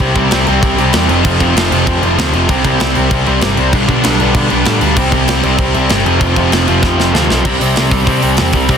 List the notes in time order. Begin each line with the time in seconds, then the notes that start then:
0.00 C2 C3 G3 C4 E4
0.15 C2 C3 G3 C4 E4, kick, crash
0.31 C2 C3 G3 C4 E4, snare, crash
0.45 C2 C3 G3 C4 E4, crash
0.61 C2 C3 G3 C4 E4, kick, crash
0.76 C2 C3 G3 C4 E4, crash
0.93 E2 C3 G3 C4 E4, snare, crash
1.08 F1 F2 C3 F3 A3 C4 F4, crash
1.24 F1 F2 C3 F3 A3 C4 F4, kick, crash
1.40 F1 F2 C3 F3 A3 C4 F4, kick, crash
1.56 F1 F2 C3 F3 A3 C4 F4, snare, crash
1.71 F1 F2 C3 F3 A3 C4 F4, crash
1.86 F2 C3 F3 A3 C4 F4, kick, crash
2.03 F1 F2 C3 F3 A3 C4 F4, crash
2.18 D2 F2 C3 F3 A3 C4 F4, snare, crash
2.33 F1 F2 C3 F3 A3 C4 F4, crash
2.49 C2 C3 G3 C4 E4, kick, crash
2.65 C2 C3 G3 C4 E4, kick, crash
2.80 C2 C3 G3 C4 E4, snare, crash
2.95 C2 C3 G3 C4 E4, crash
3.11 C2 C3 G3 C4 E4, kick, crash
3.26 C2 C3 G3 C4 E4, crash
3.41 G1 C3 G3 C4 E4, snare, crash
3.57 C2 C3 G3 C4 E4, crash
3.73 B1 G2 B2 D3 G3 B3 D4, kick, crash
3.88 B1 G2 B2 D3 G3 B3 D4, kick, crash
4.03 B1 G2 B2 D3 G3 B3 D4, snare, crash
4.20 B1 G2 B2 D3 G3 B3 D4, crash
4.34 G2 B2 D3 G3 B3 D4, kick, crash
4.49 B1 G2 B2 D3 G3 B3 D4, crash
4.64 G2 A2 B2 D3 G3 B3 D4, snare, crash
4.80 D2 G2 B2 D3 G3 B3 D4, crash
4.96 C2 C3 G3 C4 E4, kick, crash
5.12 C2 C3 G3 C4 E4, kick, crash
5.28 C2 C3 G3 C4 E4, snare, crash
5.43 C2 C3 G3 C4 E4, crash
5.58 C2 C3 G3 C4 E4, kick, crash
5.74 C2 C3 G3 C4 E4, crash
5.89 G1 C3 G3 C4 E4, snare, crash
6.05 F1 F2 C3 F3 A3 C4 F4, crash
6.21 F1 F2 C3 F3 A3 C4 F4, kick, crash
6.36 F1 F2 C3 F3 A3 C4 F4, kick, crash
6.50 F1 F2 C3 F3 A3 C4 F4, snare, crash
6.67 F1 F2 C3 F3 A3 C4 F4, crash
6.82 F2 C3 F3 A3 C4 F4, kick, snare
6.97 F1 F2 C3 F3 A3 C4, snare
7.01 F4
7.13 D2 F2 C3 F3 A3 C4 F4, snare
7.29 B1 F2 C3 F3 A3 C4 F4, snare
7.44 C2 C3 G3 C4 E4, kick, crash
7.60 C2 C3 G3 C4, open hi-hat
7.76 C2 C3 G3 C4, snare, open hi-hat
7.90 C2 C3 G3 C4, kick, open hi-hat
8.07 C3 G3 C4 E4, kick, open hi-hat
8.21 C2 C3 G3 C4, open hi-hat
8.37 E2 C3 G3 C4, snare, open hi-hat
8.53 C2 C3 G3 C4, kick, open hi-hat
8.68 C2 C3 G3 C4 E4, kick, open hi-hat